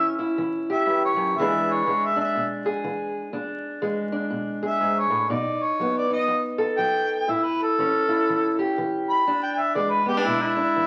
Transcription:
0.00 0.35 E3 medium
0.00 1.36 C#4 medium
0.00 0.18 E4 medium
0.00 0.20 E5 medium
0.19 1.40 E4 medium
0.38 0.84 E3 medium
0.70 1.36 G4 medium
0.70 1.04 E5 medium
0.86 1.16 G2 medium
1.05 1.39 C#5 medium
1.16 1.37 F#2 medium
1.38 1.84 E2 medium
1.38 1.86 E3 medium
1.38 1.87 G#3 medium
1.38 2.16 D4 medium
1.38 2.64 G#4 medium
1.38 1.74 E5 medium
1.72 2.07 C#5 medium
1.87 2.32 E3 medium
1.87 3.81 G#3 medium
2.05 2.19 E5 medium
2.16 3.32 D4 medium
2.16 2.46 E5 medium
2.35 2.81 B2 medium
2.66 3.32 G#4 medium
2.84 3.30 E3 medium
3.33 3.79 E2 medium
3.33 4.11 D4 medium
3.82 4.28 E3 medium
3.82 5.31 G#3 medium
4.12 5.29 D4 medium
4.30 4.77 B2 medium
4.63 5.29 G#4 medium
4.67 5.01 E5 medium
4.81 5.09 G#2 medium
4.99 5.29 C#5 medium
5.10 5.31 A2 medium
5.29 5.76 B2 medium
5.29 6.09 D#4 medium
5.29 5.64 D5 medium
5.62 5.95 C#5 medium
5.80 6.26 F#3 medium
5.80 7.26 B3 medium
5.97 6.12 D5 medium
6.10 7.26 D#4 medium
6.10 6.39 D#5 loud
6.28 6.74 F#2 medium
6.58 7.25 A4 medium
6.78 7.24 F#3 medium
6.78 7.31 G5 loud
7.28 7.73 A2 medium
7.28 8.08 E4 medium
7.28 7.45 E5 medium
7.44 7.63 B4 medium
7.62 8.57 A4 medium
7.78 8.23 E3 medium
7.78 9.24 C#4 medium
8.08 9.27 E4 medium
8.29 8.73 E3 medium
8.59 9.24 G4 medium
8.78 9.22 E3 medium
9.10 9.41 B5 loud
9.27 9.72 E2 medium
9.27 10.05 D4 medium
9.43 9.60 G5 medium
9.59 9.74 E5 loud
9.74 10.20 E3 medium
9.74 10.87 G#3 medium
9.74 9.92 D5 medium
9.90 10.06 B4 loud
10.06 10.17 B3 medium
10.06 10.27 G4 loud
10.17 10.55 D4 soft
10.25 10.70 B2 medium
10.25 10.40 E4 loud
10.41 10.87 E4 loud
10.57 10.87 D4 medium
10.76 10.87 E3 medium

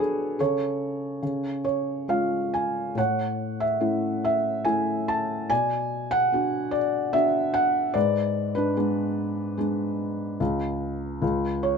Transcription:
0.00 0.35 B2 medium
0.00 0.40 F#3 medium
0.00 0.41 B3 soft
0.00 0.41 D4 medium
0.00 0.40 G#4 medium
0.00 0.39 A4 medium
0.00 0.41 B4 medium
0.00 0.40 C#5 loud
0.39 1.20 C#3 medium
0.39 1.60 A4 medium
0.39 1.63 C#5 medium
1.22 2.92 C#3 medium
1.65 2.05 C#5 medium
2.08 2.93 G#3 soft
2.08 2.94 C#4 soft
2.08 2.94 F4 soft
2.08 2.50 F5 medium
2.54 2.98 G#5 medium
2.95 5.46 A2 medium
2.95 4.21 C#5 medium
2.95 3.63 F#5 medium
3.60 4.20 E5 medium
3.80 4.63 A3 soft
3.80 4.63 C#4 soft
3.80 4.63 E4 soft
4.24 4.68 E5 medium
4.65 5.47 A3 soft
4.65 5.47 C#4 soft
4.65 5.48 E4 soft
4.65 5.09 G#5 medium
5.08 5.52 A5 medium
5.50 7.91 B2 medium
5.50 6.70 D5 medium
5.50 6.15 G#5 loud
6.11 6.75 F#5 loud
6.32 7.11 B3 soft
6.32 7.12 D4 soft
6.32 7.12 F#4 medium
6.71 7.10 D5 medium
7.13 7.92 B3 soft
7.13 7.93 D4 soft
7.13 7.93 F#4 medium
7.13 7.51 E5 loud
7.54 7.96 F#5 loud
7.94 10.36 G#2 medium
7.94 8.53 B4 medium
7.94 8.51 D5 medium
8.55 8.76 D4 medium
8.55 11.78 B4 medium
8.76 9.56 G#3 medium
8.76 9.56 B3 medium
8.76 9.56 D4 medium
9.57 10.37 G#3 medium
9.57 10.38 B3 soft
9.57 10.38 D4 medium
10.40 11.20 C#2 medium
11.22 11.78 C#2 medium
11.63 11.78 C#5 medium

